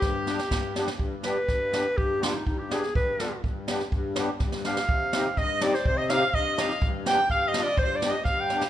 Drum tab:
SD |o-ooo-oo|--o-o-o-|--o---oo|--o---oo|
BD |o---o---|o---o---|o---o---|o---o---|

SD |--o-oooo|--o-o-oo|--o---oo|--o---o-|
BD |o---o---|o---o---|o---o---|o---o---|

SD |--o-o-oo|
BD |o---o---|